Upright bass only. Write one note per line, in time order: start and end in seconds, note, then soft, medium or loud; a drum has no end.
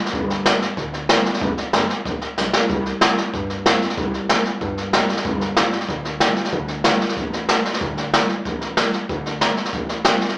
0.13 0.47 G1 medium
0.62 muted upright bass stroke medium
0.77 1.11 D2 medium
1.26 muted upright bass stroke medium
1.41 1.53 G1 loud
1.57 muted upright bass stroke medium
1.74 1.87 G1 medium
2.06 2.19 A1 medium
2.22 muted upright bass stroke medium
2.38 2.51 B1 medium
2.54 muted upright bass stroke medium
2.70 3.03 C2 loud
3.18 muted upright bass stroke medium
3.34 3.67 G2 medium
3.82 muted upright bass stroke medium
3.98 4.31 C2 medium
4.45 muted upright bass stroke medium
4.61 4.95 G2 medium
5.25 5.59 G1 medium
5.73 muted upright bass stroke medium
5.89 6.22 D2 medium
6.36 muted upright bass stroke medium
6.52 6.86 D2 loud
7.01 muted upright bass stroke medium
7.17 7.51 A1 medium
7.65 muted upright bass stroke medium
7.81 8.15 D2 medium
8.30 muted upright bass stroke medium
8.46 8.79 A1 medium
8.94 muted upright bass stroke medium
9.10 9.43 D2 loud
9.57 muted upright bass stroke medium
9.73 10.07 A1 medium
10.21 muted upright bass stroke medium